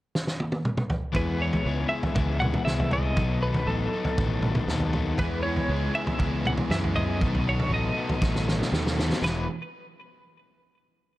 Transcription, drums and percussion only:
0.15 snare medium
0.27 snare medium
0.40 high tom medium
0.52 high tom medium
0.65 mid tom medium
0.77 mid tom medium
0.90 floor tom medium
1.14 kick medium
1.14 floor tom medium
1.53 floor tom medium
2.03 floor tom medium
2.15 kick loud
2.15 floor tom medium
2.42 mid tom medium
2.54 floor tom medium
2.54 mid tom medium
2.67 snare medium
2.80 floor tom medium
2.91 floor tom medium
3.17 kick medium
3.17 floor tom medium
3.54 floor tom medium
4.05 floor tom medium
4.18 kick loud
4.18 floor tom medium
4.42 mid tom medium
4.55 floor tom medium
4.55 mid tom medium
4.68 snare medium
4.80 floor tom medium
4.93 floor tom medium
5.18 kick medium
5.18 floor tom medium
5.56 floor tom medium
6.07 floor tom medium
6.19 kick loud
6.19 floor tom medium
6.45 mid tom medium
6.58 floor tom medium
6.58 mid tom medium
6.71 snare medium
6.84 floor tom medium
6.96 floor tom medium
7.21 kick medium
7.21 floor tom medium
7.35 floor tom medium
7.60 floor tom medium
8.09 floor tom medium
8.22 kick loud
8.22 snare medium
8.35 snare soft
8.48 snare medium
8.62 snare medium
8.73 snare medium
8.87 snare medium
8.99 snare medium
9.12 snare medium
9.25 snare medium

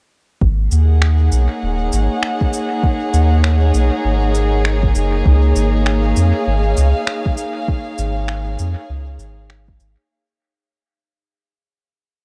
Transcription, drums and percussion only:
0.41 kick loud
0.71 cabasa medium
1.02 finger snap medium
1.32 cabasa soft
1.93 cabasa soft
2.23 finger snap medium
2.41 kick loud
2.53 cabasa soft
2.83 kick loud
3.14 cabasa medium
3.44 finger snap medium
3.74 cabasa medium
4.35 cabasa soft
4.65 finger snap medium
4.83 kick loud
4.95 cabasa medium
5.26 kick loud
5.56 cabasa medium
5.86 finger snap medium
6.16 cabasa medium
6.77 cabasa soft
7.07 finger snap medium
7.26 kick loud
7.37 cabasa medium
7.68 kick loud
7.98 cabasa soft
8.28 finger snap medium
8.59 cabasa medium
9.19 cabasa soft
9.50 finger snap medium
9.68 kick loud
9.80 cabasa soft

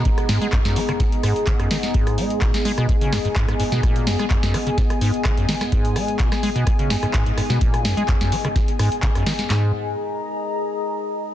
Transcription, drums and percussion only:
0.05 kick loud
0.05 closed hi-hat medium
0.18 cross-stick medium
0.18 closed hi-hat soft
0.29 snare medium
0.29 open hi-hat loud
0.41 closed hi-hat soft
0.53 kick loud
0.53 cross-stick medium
0.53 clap loud
0.53 closed hi-hat medium
0.65 snare medium
0.65 closed hi-hat soft
0.76 open hi-hat loud
0.89 cross-stick medium
0.89 closed hi-hat soft
1.00 kick loud
1.00 snare soft
1.00 closed hi-hat medium
1.12 closed hi-hat soft
1.23 cross-stick medium
1.23 open hi-hat loud
1.36 closed hi-hat soft
1.47 kick loud
1.47 clap loud
1.47 closed hi-hat medium
1.60 cross-stick medium
1.60 closed hi-hat soft
1.71 snare medium
1.71 open hi-hat loud
1.83 snare medium
1.83 closed hi-hat soft
1.94 kick loud
1.94 closed hi-hat medium
2.07 cross-stick medium
2.07 closed hi-hat soft
2.18 open hi-hat loud
2.30 closed hi-hat soft
2.41 kick loud
2.41 cross-stick medium
2.41 clap loud
2.41 closed hi-hat medium
2.54 snare medium
2.54 closed hi-hat soft
2.65 open hi-hat loud
2.78 cross-stick medium
2.78 closed hi-hat soft
2.89 kick loud
2.89 closed hi-hat medium
3.01 closed hi-hat soft
3.13 cross-stick medium
3.13 snare medium
3.13 open hi-hat loud
3.25 closed hi-hat soft
3.36 kick loud
3.36 clap loud
3.36 closed hi-hat medium
3.48 cross-stick medium
3.48 closed hi-hat soft
3.60 open hi-hat loud
3.72 snare medium
3.72 closed hi-hat soft
3.83 kick loud
3.83 cross-stick medium
3.83 closed hi-hat medium
3.96 closed hi-hat soft
4.07 snare medium
4.07 open hi-hat loud
4.19 cross-stick medium
4.19 closed hi-hat soft
4.30 kick loud
4.30 clap loud
4.30 closed hi-hat medium
4.43 snare medium
4.43 closed hi-hat soft
4.54 cross-stick medium
4.54 open hi-hat loud
4.67 closed hi-hat soft
4.78 kick loud
4.78 snare soft
4.78 closed hi-hat medium
4.90 cross-stick medium
4.90 closed hi-hat soft
5.01 open hi-hat loud
5.14 closed hi-hat soft
5.25 kick loud
5.25 cross-stick medium
5.25 clap loud
5.25 closed hi-hat medium
5.37 closed hi-hat soft
5.49 snare medium
5.49 open hi-hat loud
5.61 cross-stick medium
5.61 snare medium
5.61 closed hi-hat soft
5.72 kick loud
5.72 closed hi-hat medium
5.85 closed hi-hat soft
5.96 cross-stick medium
5.96 open hi-hat loud
6.08 closed hi-hat soft
6.19 kick loud
6.19 clap loud
6.19 closed hi-hat medium
6.32 cross-stick medium
6.32 snare medium
6.32 closed hi-hat soft
6.43 open hi-hat loud
6.56 closed hi-hat soft
6.67 kick loud
6.67 cross-stick medium
6.67 closed hi-hat medium
6.79 closed hi-hat soft
6.90 snare medium
6.90 open hi-hat loud
7.03 cross-stick medium
7.03 closed hi-hat soft
7.14 kick loud
7.14 clap loud
7.14 closed hi-hat medium
7.26 closed hi-hat soft
7.38 cross-stick medium
7.38 open hi-hat loud
7.50 snare medium
7.50 closed hi-hat soft
7.61 kick loud
7.61 closed hi-hat medium
7.74 cross-stick medium
7.74 closed hi-hat soft
7.85 snare medium
7.85 open hi-hat loud
7.97 closed hi-hat soft
8.08 kick loud
8.08 cross-stick medium
8.08 clap loud
8.08 closed hi-hat medium
8.21 snare medium
8.21 closed hi-hat soft
8.32 open hi-hat loud
8.45 cross-stick medium
8.45 closed hi-hat soft
8.56 kick loud
8.56 snare soft
8.56 closed hi-hat medium
8.68 closed hi-hat soft
8.79 cross-stick medium
8.79 open hi-hat loud
8.92 closed hi-hat soft
9.03 kick loud
9.03 clap loud
9.03 closed hi-hat medium
9.15 cross-stick medium
9.15 closed hi-hat soft
9.26 snare medium
9.26 open hi-hat loud
9.39 snare medium
9.39 closed hi-hat soft
9.50 snare loud
9.50 clap medium

